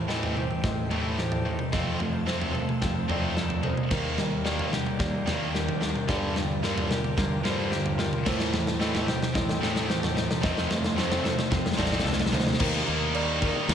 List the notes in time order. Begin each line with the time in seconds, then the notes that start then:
Already playing: A2 D#3 G3 C5 G5 A5
0.08 A2 E3 A3 C4 D#5, snare
0.23 floor tom
0.36 A2 E3 G4 C5, mid tom
0.51 mid tom
0.64 A2 E3 C4 D#5, kick, snare, floor tom
0.90 A2 E3 A3 D#4, floor tom
1.18 A2 E3 G4 C5, snare
1.32 floor tom
1.45 A2 E3 D#4
1.59 mid tom
1.72 F2 F3 A3 C4 D#5 F5, kick, snare, floor tom
2.00 F3 A3, floor tom
2.26 F3 A3 C4 C5, snare
2.41 floor tom
2.54 F3 A3 A4 C5, mid tom
2.69 mid tom
2.82 F2 F3 A3 C4, kick, snare, floor tom
3.08 F2 F3 A3 C4 D#4 D5, floor tom
3.36 F3 A3 A4, snare
3.50 floor tom
3.63 F3 A3 D#4 C5, mid tom
3.77 mid tom
3.91 D#2 D#3 G3 A#3 A#4 D5 G5 A#5, kick, snare, floor tom, crash
4.17 D#3 G3, snare, floor tom
4.45 D#3 G3 A#3 D5, snare
4.59 floor tom
4.72 D#3 G3 G4 A#4, snare, mid tom
4.86 mid tom
4.99 D#2 D#3 G3 A#3 D5, kick, snare, floor tom
5.26 D#2 D#3 G3 A#3 D4, snare, floor tom
5.54 D#3 G3 G4 A#4, snare
5.68 floor tom
5.81 D#3 G3 D4, snare
5.96 mid tom
6.06 G2 D3 G3 F4 D5 A#5, kick, snare, floor tom
6.35 G2 D3 F3, snare, floor tom
6.62 G2 D3 G3 A#3 A#4, snare
6.78 floor tom
6.89 G2 D3 G4 A#4, snare, mid tom
7.04 mid tom
7.17 G2 D3 A#3, kick, snare, floor tom
7.43 G2 D3 G3 F4 C5, snare, floor tom
7.71 G2 D3 G4, snare
7.86 floor tom
7.98 G2 D3 F4 A#4, snare
8.13 mid tom
8.25 A2 E3 A3 D#4 C5 G5 A5, kick, snare, floor tom, crash
8.40 snare
8.53 A2 E3 G3, snare, floor tom
8.67 snare
8.79 A2 E3 A3 C4 D#5, snare
8.95 snare, floor tom
9.06 A2 E3 G4 C5, snare, mid tom
9.22 snare, mid tom
9.34 A2 E3 C4 D#5, kick, snare, floor tom
9.49 snare
9.60 A2 E3 A3 D#4, snare, floor tom
9.76 snare
9.88 A2 E3 G4 C5, snare
10.03 snare, floor tom
10.15 A2 E3 D#4, snare
10.31 snare, mid tom
10.41 F2 F3 A3 C4 D#5 F5, kick, snare, floor tom
10.57 snare
10.69 F3 A3, snare, floor tom
10.84 snare
10.95 F3 A3 C4 C5, snare
11.12 snare, floor tom
11.23 F3 A3 A4 C5, snare, mid tom
11.39 snare, mid tom
11.51 F2 F3 A3 C4, kick, snare, floor tom
11.66 snare
11.72 snare
11.77 A1 F3 A3 C4 D#4 D5, snare, floor tom
11.86 snare
11.93 snare
11.99 snare
12.04 C2 F3 A3 A4, snare
12.13 snare
12.19 snare, floor tom
12.26 snare
12.32 D2 F3 A3 D#4 C5, snare, mid tom
12.40 snare
12.47 snare, mid tom
12.53 snare
12.59 D#2 D#3 G3 A#3 D#4 A#4 G5 A#5, kick, crash
12.86 D#2 D#3 G3 A#3 D#4, crash
13.14 D#3 G3 A#3 D#4 D5, crash
13.41 D#3 G3 A#3 D#4 A#4, kick, crash
13.68 D#2 D#3 G3 A#3 D#4, snare, crash